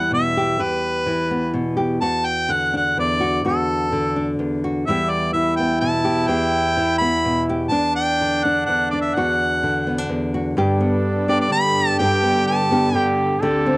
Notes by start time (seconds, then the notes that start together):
Already playing: E2 E3 G3 B3 G4 F#5
0.11 B2 E5
0.37 G4
0.59 E2 G4 B4
1.06 E3
1.31 B3
1.54 B2
1.77 G4
2.01 E2 F#4 A5
2.26 G5
2.49 D3 F#5
2.73 D4 F#5
2.97 E2 D5
3.20 F#4
3.45 E2 F#4 A4
3.92 D3
4.16 D4
4.39 E2
4.64 F#4
4.85 E2 E3 G3 E4 E5
4.89 B3 G4
5.10 D5
5.33 E3 E5
5.56 B3 G5
5.81 B2 A5
6.04 G4
6.27 E2 G4 G5
6.77 E3
6.98 B3 B5
7.25 B2
7.49 G4
7.69 E2 D4 A5
7.73 D4
7.96 G5
8.21 D3
8.43 D4 F#5
8.66 E2 F#5
8.90 D4 D5
9.02 E5
9.15 E2 F#4 F#5
9.63 D3
9.87 B3
9.98 D4
10.09 E2
10.34 F#4
10.55 G2 D3 B3 D4 G4 A4
10.81 B3
11.28 B3 D4 G4 D5
11.40 D5
11.51 D3 G4 B5
11.98 G2 G4 G5
12.22 B3
12.47 A5
12.71 B3 D4 G4
12.93 D3 G4 G5
13.40 D2 D3 C4 G4 A4
13.66 C4